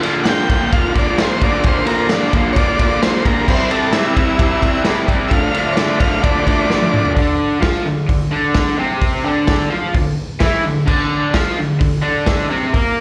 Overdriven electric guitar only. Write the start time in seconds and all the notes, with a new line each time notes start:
0.03 A#2 D3 F3 A#3 F4
0.26 A#2 D3 F3 A#3 F4
0.49 A#2 D3 F3 A#3 F4
0.71 A#2 D3 F3 A#3 F4
0.94 A#2 D3 F3 A#3 F4
1.17 A#2 D3 F3 A#3 F4
1.41 A#2 D3 F3 A#3 F4
1.64 A#2 D3 F3 A#3 F4
1.87 A#2 D3 F3 A#3 F4
2.11 A#2 D3 F3 A#3 F4
2.34 A#2 D3 F3 A#3 F4
2.56 A#2 D3 F3 A#3 F4
2.79 A#2 D3 F3 A#3 F4
3.01 A#2 D3 F3 A#3 F4
3.26 A#2 D3 F3 A#3 F4
3.48 C3 G3 C4 E4
3.70 C3 G3 C4 E4
3.93 C3 G3 C4 E4
4.16 C3 G3 C4 E4
4.40 C3 G3 C4 E4
4.61 C3 G3 C4 E4
4.85 C3 G3 C4 E4
5.06 C3 G3 C4 E4
5.30 D3 F3 A3 D4
5.52 D3 F3 A3 D4
5.76 D3 F3 A3 D4
6.00 D3 F3 A3 D4
6.23 D3 F3 A3 D4
6.47 D3 F3 A3 D4
6.68 D3 F3 A3 D4
6.91 D3 F3 A3 D4
7.14 D3 D4
7.60 F3 F4
7.85 D3
8.08 D3
8.31 D3 D4
8.78 C3 C4
9.25 D3 D4
9.71 F3 F4
9.95 D3
10.40 E3 E4
10.64 D3
10.87 D3 D4
11.34 F3 F4
11.57 D3
11.80 D3
12.02 D3 D4
12.50 C3 C4
12.73 A#3 A#4